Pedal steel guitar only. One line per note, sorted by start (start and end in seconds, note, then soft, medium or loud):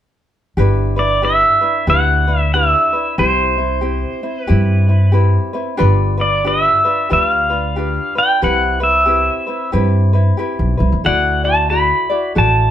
0.99 1.24 D5 medium
1.25 1.89 E5 medium
1.90 2.40 F#5 loud
2.40 2.53 E5 loud
2.54 3.15 E5 medium
3.19 4.41 C5 medium
4.41 5.11 B4 medium
6.21 6.47 D5 medium
6.48 7.13 E5 medium
7.13 7.24 E5 medium
7.24 8.18 F5 medium
8.18 8.44 G5 medium
8.44 8.83 F#5 loud
8.83 9.70 E5 medium
11.06 11.45 F#5 loud
11.45 11.70 A5 medium
11.70 12.31 B5 medium
12.38 12.71 A5 medium